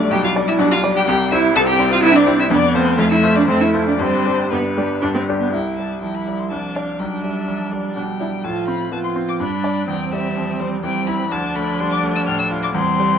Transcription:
Already playing: B1 B2 G3 A3 D4 D5
0.11 B1 B2 G3 G4 G5
0.24 F4 F5
0.36 G3 D4 D5
0.48 E4 E5
0.59 B1 B2 G3 D4 D5
0.71 F4 F5
0.83 G3 D4 D5
0.95 G4 G5
1.07 C2 C3 G4 G5
1.31 G3 E4 C5 E5
1.55 C2 C3 C4 A4 A5
1.68 G4 G5
1.79 G3 E4 C5
1.91 F4 F5
2.03 C2 C3 E4 E5
2.14 D4 D5
2.27 G3 E4 C5
2.39 E4 E5
2.50 F1 F2 B3 D4 D5
2.74 A3 C4 F4 C5
2.98 F1 F2 A3 F4 F5
3.11 E4 E5
3.23 A3 F4 C5
3.36 D4 D5
3.47 F1 F2 A3 C4 C5
3.60 E4 E5
3.73 A3 F4 C5
3.87 D4 D5
3.98 G1 G2 G3 C4 C5
4.26 G3 D4 G4
4.51 G1 G2 B3 B4
4.77 G3 D4 G4
5.02 G1 G2 D4
5.14 C4
5.29 G3 D4 G4
5.40 B3
5.53 C2 G3 E4 G5
5.78 G3 A5
6.01 F3 G3 E4 G5
6.14 B5
6.27 G3
6.39 C6
6.51 C2 F3 D4 A5
6.75 D4 D5 F5
6.99 B1 G3 D4 G5
7.23 G3 E5
7.48 F3
7.71 G3 D5
7.95 B2 G3 D4 G5
8.20 D4 E4
8.44 A2 F3 F4 A5
8.68 C4 B5
8.92 F3 B3 F4 A5
9.04 C6
9.16 C4
9.28 D6
9.40 G2 G3 D4 B5
9.64 D4 D5
9.88 E2 G3 C4 G5
10.13 G3 E5
10.36 F3
10.60 G3 C5
10.84 E3 G3 C4 G5
11.07 E4 B5
11.31 D2 F3 D4 A5
11.55 A3 B5
11.80 G3 C6
11.91 D6
12.03 A3
12.15 E6
12.27 A2 F6
12.39 E6
12.51 F4
12.63 D6
12.74 E2 G3 C4 C6
13.00 G3

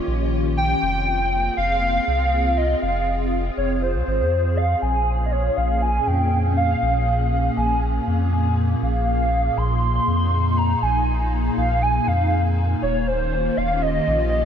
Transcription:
Already playing: D#3 A#3 C#4 F4 G4 C#5
0.07 A#1
0.57 G5
0.82 F1 C4
1.31 G#4
1.57 F1 F5
2.07 C2
2.57 D#5
2.82 F1 F5
3.57 F1 C#5
3.82 C5
3.94 C2
4.07 G#1
4.19 F2
4.57 F5
4.82 A#1 A#2 G#5
5.01 A#3
5.10 C#4
5.26 D#5
5.32 C#5
5.57 A#1 F5
5.82 G#5
6.07 F2 G5
6.57 F5
6.82 A#1
7.32 F5
7.57 A#1 G#5
8.07 F2
8.82 A#1 F5
9.51 D#4
9.57 A#1 C6
10.07 F2
10.57 A#5
10.82 A#1 G#5
11.57 A#1 F5
11.82 G#5
12.07 F2 F5
12.82 D#1 D#3 C#5
13.07 F4 C5
13.13 C#4
13.50 G4
13.57 D#1 F5
13.82 D#5
14.07 A#1
14.32 D#5

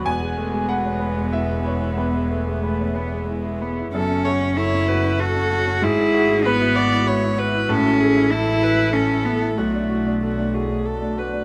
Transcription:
0.05 E1 E2 G#3 B3 G#4 E5 G#5
0.20 G#3
0.37 A3
0.53 G#3
0.69 B4 F#5
0.84 C#5
1.00 B4
1.16 G#3
1.32 E4 E5
1.47 G#3
1.64 B4 C#5
1.80 E4
1.97 E2 B4
2.13 G#3
2.30 A3
2.47 G#3
2.62 A3 B4
2.79 C#5
2.95 B3 B4
3.12 G#3
3.28 G#3 E4
3.45 G#3
3.62 B3 B4
3.78 E4
3.93 F#1 F#2 A3 C#4 F#4 A4 C#5
4.10 C#4
4.25 F#4 C#5
4.42 C#4
4.56 E4 A4 C#5
4.73 C#4
4.88 F#4 B4
5.04 C#4
5.20 F#4 A4
5.35 C#4
5.51 F#4
5.66 C#4
5.82 G#1 G#2 G#3 E4 G#4 E5
5.98 E4
6.14 F#4
6.30 E4
6.45 B3 B4
6.61 E4
6.76 F#4 D5
6.91 E4
7.07 B4 C#5
7.23 E4
7.38 F#4 B4
7.54 E4
7.69 A1 A2 A3 C#4 E4 A4
7.85 E4
8.00 G#4 A4
8.16 E4
8.31 E4 A4
8.47 E4
8.62 A4 B4
8.78 E4
8.93 C#4 A4
9.10 E4
9.25 B3 A4
9.41 E4
9.57 B1 A3 F#4 D5
9.74 D4
9.89 F#4
10.06 D4
10.22 F#4 A4
10.38 D4
10.54 F#4 G#4
10.70 D4
10.85 A4
11.02 D4
11.17 F#4 B4
11.33 D4

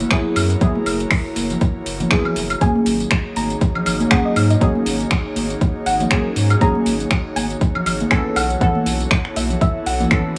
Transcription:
Already playing: B3 E4 F#4 A#4 C#5
0.00 closed hi-hat, tambourine, high conga
0.11 F#3 B3 E4 G#4, finger snap, kick, closed hi-hat, tambourine
0.36 F#2, open hi-hat, tambourine, high woodblock
0.50 closed hi-hat, tambourine
0.60 F#3 B3 E4 G#4, kick, closed hi-hat, tambourine
0.75 high conga
0.86 F#1, open hi-hat, tambourine, high woodblock
1.00 closed hi-hat, tambourine
1.11 finger snap, kick, open hi-hat, tambourine
1.36 F#1, open hi-hat, tambourine, high conga
1.50 closed hi-hat, tambourine, low conga
1.61 kick, closed hi-hat, tambourine
1.86 F#1, open hi-hat, tambourine
2.00 closed hi-hat, tambourine, high conga, low conga
2.11 F#3 B3 E4 G#4, finger snap, kick, closed hi-hat, tambourine
2.25 low conga, high woodblock
2.36 F#1, open hi-hat, tambourine
2.50 closed hi-hat, tambourine, high woodblock
2.60 F#3 A#3 C#4 D#4 F#4 G#4 C#5 G#5, kick, closed hi-hat, tambourine
2.75 high conga
2.86 G#1, open hi-hat, tambourine
3.00 closed hi-hat, tambourine
3.11 finger snap, kick, closed hi-hat, tambourine
3.36 G#1 A#5, open hi-hat, tambourine, high conga
3.50 closed hi-hat, tambourine
3.61 kick, closed hi-hat, tambourine
3.75 low conga, high woodblock
3.86 G#1, open hi-hat, tambourine, high woodblock
4.00 closed hi-hat, tambourine, high conga
4.11 F#3 A#3 C#4 G#4 F#5, finger snap, kick, closed hi-hat, tambourine
4.25 D#5
4.36 G#2, open hi-hat, tambourine, high woodblock
4.50 D#5, closed hi-hat, tambourine
4.60 F#3 A#3 C#4 G#4, kick, closed hi-hat, tambourine
4.75 high conga
4.86 G#1, open hi-hat, tambourine
5.00 closed hi-hat, tambourine
5.11 finger snap, kick, closed hi-hat, tambourine
5.36 G#1, open hi-hat, tambourine, high conga
5.50 closed hi-hat, tambourine
5.61 kick, closed hi-hat, tambourine
5.86 G#1 F#5, open hi-hat, tambourine
6.00 closed hi-hat, tambourine, high conga, low conga
6.11 F#3 A#3 C#4 G#4, finger snap, kick, closed hi-hat, tambourine
6.36 G#2, open hi-hat, tambourine
6.50 closed hi-hat, tambourine, high woodblock
6.60 F#3 A#3 C#4 G#4 A#5, kick, closed hi-hat, tambourine
6.75 high conga
6.86 G#1, open hi-hat, tambourine
7.00 closed hi-hat, tambourine
7.11 finger snap, kick, closed hi-hat, tambourine
7.36 G#1 G#5, open hi-hat, tambourine, high conga
7.50 closed hi-hat, tambourine
7.61 kick, closed hi-hat, tambourine
7.75 low conga, high woodblock
7.86 G#1, open hi-hat, tambourine, high woodblock
8.00 closed hi-hat, tambourine, high conga
8.11 E3 B3 C#4 A4 G#5, finger snap, kick, closed hi-hat, tambourine
8.36 B1 B3 E4 A4 F#5, open hi-hat, tambourine, high woodblock
8.50 closed hi-hat, tambourine
8.60 E3 B3 C#4 A4 F#5, kick, closed hi-hat, tambourine
8.75 high conga
8.86 B1, open hi-hat, tambourine
9.00 closed hi-hat, tambourine
9.11 finger snap, kick, closed hi-hat, tambourine
9.25 finger snap
9.36 B1 E5, open hi-hat, tambourine, high conga
9.50 closed hi-hat, tambourine, low conga
9.61 E5, kick, closed hi-hat, tambourine
9.86 B1 F#5, open hi-hat, tambourine
10.00 closed hi-hat, tambourine, high conga, low conga
10.11 E3 B3 C#4 A4, finger snap, kick, closed hi-hat, tambourine

